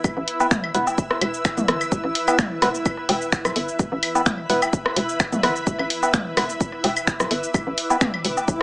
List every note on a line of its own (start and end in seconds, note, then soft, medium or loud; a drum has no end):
0.00 8.63 E4 medium
0.00 8.63 B4 medium
0.00 8.63 E5 medium
0.00 2.58 E6 medium
0.04 0.12 E1 loud
0.04 kick loud
0.04 claves medium
0.04 shaker soft
0.17 0.23 A1 loud
0.28 open hi-hat loud
0.40 0.46 B3 loud
0.40 0.46 E4 medium
0.40 0.46 B4 loud
0.40 low woodblock medium
0.40 shaker soft
0.51 finger snap medium
0.51 kick loud
0.51 mid tom medium
0.51 shaker medium
0.64 claves medium
0.75 1.15 E1 medium
0.75 0.86 B3 medium
0.75 0.86 E4 medium
0.75 0.86 B4 loud
0.75 open hi-hat loud
0.75 shaker soft
0.87 low woodblock medium
0.87 shaker soft
0.98 kick loud
0.98 shaker medium
1.11 cross-stick medium
1.21 1.50 E1 loud
1.21 open hi-hat loud
1.21 claves medium
1.34 shaker soft
1.45 finger snap medium
1.45 kick loud
1.45 shaker soft
1.57 1.64 D1 loud
1.57 mid tom medium
1.57 shaker soft
1.68 1.83 G1 medium
1.68 cross-stick medium
1.68 open hi-hat loud
1.81 claves medium
1.81 shaker soft
1.92 1.99 E1 loud
1.92 kick loud
1.92 shaker soft
2.04 2.11 A1 loud
2.15 open hi-hat medium
2.15 open hi-hat loud
2.28 2.38 B3 medium
2.28 2.38 E4 medium
2.28 2.38 B4 loud
2.28 claves medium
2.28 low woodblock medium
2.28 shaker soft
2.39 finger snap medium
2.39 kick loud
2.39 mid tom medium
2.39 shaker soft
2.56 6.33 B5 medium
2.62 3.02 E1 medium
2.62 2.69 B3 medium
2.62 2.69 E4 medium
2.62 2.69 B4 loud
2.62 cross-stick medium
2.62 open hi-hat medium
2.62 shaker soft
2.75 shaker soft
2.86 kick loud
2.86 claves medium
2.86 shaker medium
3.09 3.37 E1 loud
3.09 open hi-hat medium
3.09 low woodblock medium
3.22 shaker soft
3.32 finger snap medium
3.32 kick loud
3.32 shaker medium
3.45 3.52 D1 loud
3.45 cross-stick medium
3.45 claves medium
3.45 shaker soft
3.56 3.71 G1 medium
3.56 open hi-hat medium
3.68 shaker soft
3.79 3.87 E1 loud
3.79 kick loud
3.79 shaker medium
3.92 3.99 A1 loud
4.03 open hi-hat medium
4.03 claves medium
4.15 4.21 B3 loud
4.15 4.21 E4 medium
4.15 4.21 B4 loud
4.15 low woodblock medium
4.15 shaker soft
4.26 finger snap medium
4.26 kick loud
4.26 mid tom medium
4.26 shaker medium
4.50 4.90 E1 medium
4.50 4.61 B3 medium
4.50 4.61 E4 medium
4.50 4.61 B4 loud
4.50 open hi-hat medium
4.50 shaker soft
4.62 claves medium
4.62 low woodblock medium
4.62 shaker soft
4.73 kick loud
4.73 shaker medium
4.86 cross-stick medium
4.96 5.25 E1 loud
4.96 open hi-hat medium
4.96 open hi-hat loud
5.09 shaker soft
5.20 finger snap medium
5.20 kick loud
5.20 claves medium
5.20 shaker medium
5.32 5.39 D1 loud
5.32 mid tom medium
5.32 shaker soft
5.43 5.58 G1 medium
5.43 5.55 B3 medium
5.43 5.55 E4 medium
5.43 5.55 B4 medium
5.43 cross-stick medium
5.43 open hi-hat medium
5.56 shaker soft
5.67 5.74 E1 loud
5.67 kick loud
5.67 shaker medium
5.79 5.86 A1 loud
5.79 claves medium
5.90 open hi-hat medium
6.03 6.13 B3 medium
6.03 6.13 E4 medium
6.03 6.13 B4 loud
6.03 low woodblock medium
6.03 shaker soft
6.14 finger snap medium
6.14 kick loud
6.14 mid tom medium
6.14 shaker medium
6.31 8.63 D6 medium
6.37 6.77 E1 medium
6.37 6.44 B3 medium
6.37 6.44 E4 medium
6.37 6.44 B4 loud
6.37 cross-stick medium
6.37 open hi-hat medium
6.37 claves medium
6.37 shaker soft
6.50 shaker soft
6.61 kick loud
6.61 shaker medium
6.84 7.12 E1 loud
6.84 open hi-hat medium
6.84 low woodblock medium
6.96 claves medium
6.96 shaker soft
7.07 finger snap medium
7.07 kick loud
7.07 shaker medium
7.20 7.27 D1 loud
7.20 cross-stick medium
7.20 shaker soft
7.31 7.46 G1 medium
7.31 open hi-hat medium
7.43 shaker soft
7.54 7.62 E1 loud
7.54 kick loud
7.54 claves medium
7.54 shaker medium
7.67 7.74 A1 loud
7.78 open hi-hat medium
7.78 shaker soft
7.90 7.96 B3 loud
7.90 7.96 E4 medium
7.90 7.96 B4 loud
7.90 low woodblock medium
7.90 shaker soft
8.01 finger snap medium
8.01 kick loud
8.01 mid tom medium
8.01 shaker medium
8.14 claves medium
8.25 8.47 E1 medium
8.25 open hi-hat medium
8.25 shaker soft
8.37 low woodblock medium
8.37 shaker soft
8.48 8.56 B1 medium
8.48 kick loud
8.48 swell medium
8.48 shaker medium